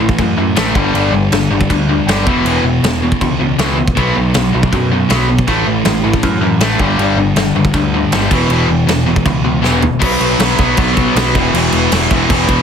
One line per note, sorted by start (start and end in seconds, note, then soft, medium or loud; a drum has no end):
0.00 0.10 A1 medium
0.00 0.73 A2 medium
0.00 0.17 A2 medium
0.00 0.74 E3 medium
0.00 0.17 E3 medium
0.00 0.74 A3 medium
0.09 kick medium
0.18 0.34 F#2 medium
0.18 0.36 A2 medium
0.18 0.36 E3 medium
0.18 kick medium
0.18 crash medium
0.37 0.52 F#2 medium
0.37 0.54 A2 medium
0.37 0.55 E3 medium
0.56 0.72 A1 medium
0.56 0.74 A2 medium
0.56 0.74 E3 medium
0.56 0.74 A3 loud
0.56 snare loud
0.56 crash medium
0.75 0.90 G1 medium
0.75 0.93 G2 medium
0.75 0.93 D3 medium
0.75 0.93 G3 loud
0.75 kick loud
0.94 1.09 G1 medium
0.94 1.11 G2 medium
0.94 1.12 D3 loud
0.94 1.12 G3 loud
0.94 crash medium
1.12 1.27 G1 medium
1.12 1.30 G2 medium
1.12 1.30 D3 medium
1.32 1.47 G1 medium
1.32 1.49 G2 medium
1.32 1.49 D3 medium
1.32 snare loud
1.32 crash medium
1.50 1.66 G1 medium
1.50 1.68 G2 medium
1.50 1.68 D3 medium
1.61 kick medium
1.70 2.00 D2 medium
1.70 1.87 G2 medium
1.70 1.87 D3 medium
1.70 kick medium
1.70 crash medium
1.89 2.06 G2 medium
1.89 2.06 D3 medium
2.06 2.27 G1 medium
2.06 2.26 G2 medium
2.06 2.26 D3 loud
2.06 2.26 G3 loud
2.06 snare loud
2.06 crash medium
2.27 2.41 E1 medium
2.27 2.44 E2 medium
2.27 2.45 B2 loud
2.27 2.45 E3 medium
2.27 kick loud
2.45 2.60 E1 medium
2.45 2.63 E2 medium
2.45 2.64 B2 medium
2.45 2.64 E3 loud
2.45 crash medium
2.63 2.78 E1 medium
2.63 2.82 E2 medium
2.63 2.82 B2 medium
2.83 3.13 E1 medium
2.83 3.01 E2 medium
2.83 3.01 B2 medium
2.83 snare loud
2.83 crash medium
3.02 3.19 E2 medium
3.02 3.19 B2 medium
3.12 kick medium
3.21 3.36 C#2 medium
3.21 3.38 E2 medium
3.21 3.38 B2 medium
3.21 kick medium
3.21 crash medium
3.39 3.55 C#2 medium
3.39 3.57 E2 medium
3.39 3.57 B2 medium
3.58 3.89 C#2 medium
3.58 3.77 E2 medium
3.58 3.77 B2 medium
3.58 3.77 E3 medium
3.58 snare loud
3.58 crash medium
3.78 3.95 E2 medium
3.78 3.95 B2 medium
3.88 kick medium
3.96 4.12 B1 medium
3.96 4.14 B2 medium
3.96 4.15 F#3 loud
3.96 4.15 B3 medium
3.96 kick medium
3.96 crash medium
4.16 4.31 B1 medium
4.16 4.33 B2 medium
4.16 4.33 F#3 medium
4.34 4.50 B1 medium
4.34 4.52 B2 medium
4.34 4.52 F#3 medium
4.34 snare loud
4.34 crash medium
4.53 4.69 B1 medium
4.53 4.70 B2 medium
4.53 4.71 F#3 medium
4.63 kick medium
4.72 5.02 F#2 medium
4.72 4.89 B2 medium
4.72 4.90 F#3 medium
4.72 kick medium
4.72 crash medium
4.92 5.08 B2 medium
4.92 5.08 F#3 medium
5.09 5.40 B1 medium
5.09 5.27 B2 medium
5.09 5.28 F#3 medium
5.09 5.28 B3 medium
5.09 snare loud
5.09 crash medium
5.29 5.46 B2 medium
5.29 5.46 F#3 medium
5.38 kick medium
5.47 5.62 A1 loud
5.47 5.65 A2 medium
5.47 5.65 E3 medium
5.47 5.66 A3 medium
5.47 kick medium
5.47 crash medium
5.66 5.81 A1 medium
5.66 5.84 A2 medium
5.66 5.84 E3 medium
5.85 6.15 A1 medium
5.85 6.03 A2 medium
5.85 6.03 E3 medium
5.85 snare loud
5.85 crash medium
6.04 6.22 A2 medium
6.04 6.22 E3 medium
6.13 kick medium
6.23 6.38 F#2 loud
6.23 6.40 A2 medium
6.23 6.41 E3 medium
6.23 kick loud
6.23 crash medium
6.41 6.56 F#2 medium
6.41 6.59 A2 medium
6.41 6.59 E3 medium
6.59 6.75 A1 medium
6.59 6.79 A2 medium
6.59 6.79 E3 loud
6.59 6.80 A3 medium
6.59 snare loud
6.59 crash medium
6.79 6.95 G1 medium
6.79 6.98 G2 medium
6.79 6.98 D3 medium
6.79 6.99 G3 loud
6.79 kick loud
6.98 7.13 G1 loud
6.98 7.17 G2 medium
6.98 7.17 D3 medium
6.98 7.18 G3 loud
6.98 crash medium
7.16 7.32 G1 medium
7.16 7.35 G2 medium
7.16 7.35 D3 medium
7.36 7.51 G1 medium
7.36 7.54 G2 medium
7.36 7.54 D3 loud
7.36 snare loud
7.36 crash medium
7.55 7.70 G1 medium
7.55 7.73 G2 medium
7.55 7.73 D3 medium
7.65 kick medium
7.74 8.04 D2 loud
7.74 7.92 G2 medium
7.74 7.92 D3 loud
7.74 kick loud
7.74 crash medium
7.94 8.11 G2 medium
7.94 8.11 D3 medium
8.11 8.27 G1 medium
8.11 8.31 G2 medium
8.11 8.31 D3 loud
8.11 8.31 G3 loud
8.11 snare loud
8.11 crash medium
8.31 8.46 E1 medium
8.31 8.48 E2 medium
8.31 8.49 B2 medium
8.31 8.49 E3 loud
8.31 kick loud
8.31 crash loud
8.49 8.65 E1 medium
8.49 8.67 E2 medium
8.49 8.67 B2 loud
8.49 8.68 E3 medium
8.49 crash medium
8.68 8.84 E1 medium
8.68 8.86 E2 medium
8.68 8.86 B2 medium
8.86 9.17 E1 medium
8.86 9.05 E2 medium
8.86 9.05 B2 medium
8.86 snare loud
8.86 crash medium
9.06 9.24 E2 medium
9.06 9.24 B2 medium
9.16 kick medium
9.25 9.41 C#2 medium
9.25 9.43 E2 medium
9.25 9.43 B2 loud
9.25 kick loud
9.25 crash medium
9.44 9.60 C#2 loud
9.44 9.61 E2 medium
9.44 9.61 B2 medium
9.62 9.93 E1 medium
9.62 9.81 E2 loud
9.62 9.81 B2 loud
9.62 9.82 E3 loud
9.62 snare medium
9.82 10.00 E2 medium
9.82 9.98 B2 medium
9.82 floor tom medium
9.99 10.16 B1 medium
9.99 10.38 B2 medium
9.99 10.39 F#3 loud
9.99 10.40 B3 loud
9.99 kick loud
9.99 crash loud
10.20 10.35 B1 medium
10.20 crash medium
10.39 10.53 B1 medium
10.39 10.56 B2 loud
10.39 10.57 F#3 loud
10.39 10.58 B3 loud
10.39 snare loud
10.39 crash medium
10.57 10.73 B1 loud
10.57 10.75 B2 loud
10.57 10.76 F#3 loud
10.57 10.77 B3 loud
10.57 kick medium
10.57 crash medium
10.76 11.06 B1 loud
10.76 11.14 B2 loud
10.76 11.15 F#3 loud
10.76 11.16 B3 loud
10.76 kick loud
10.76 crash medium
10.95 11.14 B2 medium
10.95 11.14 F#3 medium
10.95 11.14 B3 medium
10.95 kick medium
10.95 crash medium
11.15 11.36 B1 medium
11.15 11.33 B2 medium
11.15 11.34 F#3 medium
11.15 11.34 B3 medium
11.15 snare loud
11.15 crash loud
11.35 11.49 E1 medium
11.35 11.52 E2 loud
11.35 11.53 B2 loud
11.35 11.54 E3 loud
11.35 kick loud
11.35 crash medium
11.54 11.68 E1 medium
11.54 11.90 E2 loud
11.54 11.91 B2 loud
11.54 11.92 E3 loud
11.54 crash loud
11.72 11.87 E1 medium
11.72 crash medium
11.91 12.06 E1 medium
11.91 12.09 E2 medium
11.91 12.10 B2 loud
11.91 12.11 E3 medium
11.91 snare loud
11.91 crash loud
12.10 12.25 E1 medium
12.10 12.29 E2 medium
12.10 12.29 B2 medium
12.10 12.30 E3 loud
12.10 kick loud
12.10 crash medium
12.30 12.58 E1 loud
12.30 12.62 E2 loud
12.30 12.62 B2 loud
12.30 12.62 E3 loud
12.30 kick loud
12.30 crash loud
12.47 12.62 E2 medium
12.47 12.62 B2 medium
12.47 12.62 E3 loud
12.47 kick medium
12.47 crash medium